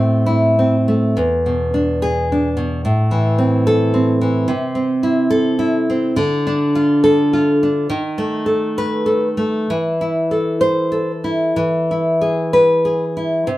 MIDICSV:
0, 0, Header, 1, 2, 480
1, 0, Start_track
1, 0, Key_signature, 0, "minor"
1, 0, Tempo, 906344
1, 619, Tempo, 858369
1, 1099, Tempo, 828729
1, 1580, Time_signature, 4, 2, 24, 8
1, 3499, Tempo, 869565
1, 4939, Tempo, 917431
1, 5899, Tempo, 953895
1, 7390, End_track
2, 0, Start_track
2, 0, Title_t, "Nylon-string guitar"
2, 0, Program_c, 0, 24
2, 0, Note_on_c, 0, 45, 44
2, 0, Note_on_c, 0, 57, 35
2, 0, Note_on_c, 0, 60, 35
2, 140, Note_on_c, 0, 64, 47
2, 305, Note_off_c, 0, 60, 0
2, 311, Note_on_c, 0, 60, 35
2, 399, Note_off_c, 0, 64, 0
2, 459, Note_off_c, 0, 57, 0
2, 466, Note_on_c, 0, 57, 32
2, 600, Note_off_c, 0, 45, 0
2, 618, Note_on_c, 0, 40, 45
2, 620, Note_off_c, 0, 57, 0
2, 623, Note_off_c, 0, 60, 0
2, 782, Note_on_c, 0, 47, 31
2, 938, Note_on_c, 0, 62, 38
2, 1096, Note_on_c, 0, 68, 53
2, 1262, Note_off_c, 0, 62, 0
2, 1269, Note_on_c, 0, 62, 36
2, 1356, Note_off_c, 0, 68, 0
2, 1405, Note_off_c, 0, 47, 0
2, 1412, Note_on_c, 0, 47, 35
2, 1556, Note_off_c, 0, 40, 0
2, 1572, Note_off_c, 0, 47, 0
2, 1574, Note_on_c, 0, 45, 45
2, 1584, Note_off_c, 0, 62, 0
2, 1727, Note_on_c, 0, 52, 39
2, 1885, Note_on_c, 0, 60, 38
2, 2049, Note_on_c, 0, 69, 55
2, 2198, Note_off_c, 0, 60, 0
2, 2205, Note_on_c, 0, 60, 40
2, 2308, Note_off_c, 0, 69, 0
2, 2359, Note_off_c, 0, 52, 0
2, 2366, Note_on_c, 0, 52, 37
2, 2509, Note_off_c, 0, 45, 0
2, 2518, Note_on_c, 0, 48, 52
2, 2530, Note_off_c, 0, 52, 0
2, 2531, Note_off_c, 0, 60, 0
2, 2676, Note_on_c, 0, 60, 37
2, 2839, Note_on_c, 0, 64, 45
2, 2997, Note_on_c, 0, 69, 60
2, 3155, Note_off_c, 0, 64, 0
2, 3161, Note_on_c, 0, 64, 47
2, 3263, Note_off_c, 0, 69, 0
2, 3333, Note_off_c, 0, 60, 0
2, 3340, Note_on_c, 0, 60, 43
2, 3468, Note_off_c, 0, 48, 0
2, 3493, Note_off_c, 0, 64, 0
2, 3495, Note_on_c, 0, 50, 59
2, 3502, Note_off_c, 0, 60, 0
2, 3662, Note_on_c, 0, 62, 47
2, 3821, Note_on_c, 0, 65, 47
2, 3977, Note_on_c, 0, 69, 64
2, 4134, Note_off_c, 0, 65, 0
2, 4140, Note_on_c, 0, 65, 46
2, 4237, Note_off_c, 0, 69, 0
2, 4297, Note_off_c, 0, 62, 0
2, 4304, Note_on_c, 0, 62, 42
2, 4434, Note_off_c, 0, 50, 0
2, 4451, Note_on_c, 0, 51, 61
2, 4456, Note_off_c, 0, 65, 0
2, 4459, Note_off_c, 0, 62, 0
2, 4608, Note_on_c, 0, 57, 41
2, 4763, Note_on_c, 0, 69, 45
2, 4938, Note_on_c, 0, 71, 64
2, 5079, Note_off_c, 0, 69, 0
2, 5086, Note_on_c, 0, 69, 43
2, 5196, Note_off_c, 0, 71, 0
2, 5243, Note_off_c, 0, 57, 0
2, 5249, Note_on_c, 0, 57, 42
2, 5399, Note_off_c, 0, 51, 0
2, 5417, Note_off_c, 0, 57, 0
2, 5417, Note_off_c, 0, 69, 0
2, 5421, Note_on_c, 0, 52, 53
2, 5583, Note_on_c, 0, 64, 43
2, 5741, Note_on_c, 0, 69, 40
2, 5895, Note_on_c, 0, 72, 54
2, 6045, Note_off_c, 0, 69, 0
2, 6051, Note_on_c, 0, 69, 37
2, 6148, Note_off_c, 0, 72, 0
2, 6209, Note_off_c, 0, 64, 0
2, 6215, Note_on_c, 0, 64, 35
2, 6355, Note_off_c, 0, 52, 0
2, 6374, Note_off_c, 0, 69, 0
2, 6376, Note_off_c, 0, 64, 0
2, 6376, Note_on_c, 0, 52, 52
2, 6551, Note_on_c, 0, 64, 32
2, 6704, Note_on_c, 0, 68, 37
2, 6864, Note_on_c, 0, 71, 52
2, 7018, Note_off_c, 0, 68, 0
2, 7024, Note_on_c, 0, 68, 36
2, 7120, Note_off_c, 0, 71, 0
2, 7177, Note_off_c, 0, 64, 0
2, 7183, Note_on_c, 0, 64, 36
2, 7320, Note_off_c, 0, 52, 0
2, 7336, Note_on_c, 0, 48, 48
2, 7341, Note_off_c, 0, 64, 0
2, 7342, Note_off_c, 0, 68, 0
2, 7390, Note_off_c, 0, 48, 0
2, 7390, End_track
0, 0, End_of_file